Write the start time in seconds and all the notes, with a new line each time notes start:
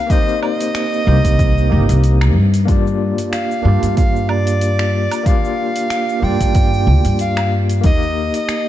Already playing: A#3 C4 D#4 G4 C5 F5
0.07 A#3 C4 D#4, kick, open hi-hat
0.11 G4 C5 D#5, shaker
0.29 shaker
0.42 D#5, low woodblock
0.61 open hi-hat, shaker
0.75 finger snap, open hi-hat, shaker
0.93 shaker
1.05 C2 A#3 C4 D#4 G4 C5
1.25 C2, kick, open hi-hat, shaker
1.39 kick, open hi-hat, shaker
1.58 shaker
1.69 G1 A#3 C4 D#4 G4 D#5
1.89 C2, open hi-hat, shaker
2.04 open hi-hat, shaker
2.21 finger snap, low woodblock, shaker
2.35 G2
2.54 open hi-hat, shaker
2.65 A#3 D4 F4, kick, open hi-hat, shaker
2.70 G4 D5
2.87 shaker
3.18 open hi-hat, shaker
3.32 F5, finger snap, open hi-hat, shaker
3.51 shaker
3.62 G2 A#3 D4 F4
3.67 G4 D5
3.83 G2, open hi-hat, shaker
3.97 F5, kick, open hi-hat, shaker
4.16 shaker
4.29 D5, low woodblock
4.47 open hi-hat, shaker
4.61 open hi-hat, shaker
4.79 finger snap, shaker
5.11 open hi-hat, low woodblock, shaker
5.23 A#3 D4 F4 F5, kick, open hi-hat, shaker
5.28 G4 D5
5.45 shaker
5.76 open hi-hat, shaker
5.90 finger snap, open hi-hat, shaker
6.09 shaker
6.20 G2 A#3 D4 F4 G5
6.25 G4 D5
6.41 G2, kick, open hi-hat, shaker
6.55 kick, open hi-hat, shaker
6.73 shaker
6.87 D2
7.05 G2, open hi-hat, shaker
7.19 F5, open hi-hat, shaker
7.37 finger snap, low woodblock, shaker
7.70 open hi-hat, shaker
7.81 D#2 A#3 D#4, kick, open hi-hat, shaker
7.86 G4 D#5
8.02 shaker
8.34 D#5, open hi-hat, shaker
8.49 finger snap, open hi-hat, shaker